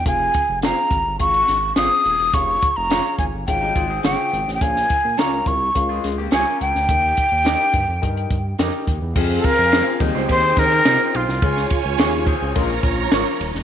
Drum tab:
CC |----------------|----------------|----------------|----------------|
RD |----------------|----------------|----------------|----------------|
HH |x-x-x-x-xxx-x-x-|x-x-x-x-x-x-x-x-|x-x-x-x-x-x-x-x-|x-x-x-x-xxx-x-x-|
SD |----o-----o-o---|----o-------o--o|-o--o-----o-o--o|----o-------o---|
BD |o-o---o-o-------|o-o---o-o-o-----|o-o---o-o-------|o-o---o-o-o---o-|

CC |x---------------|----------------|
RD |--x-xxx-x-xxx-x-|x-x-xxx-x-x-x-x-|
HH |----------------|----------------|
SD |----o-----o-o--o|-o--o-------o--o|
BD |o-o---o-o-o-----|o-o---o-o-o-----|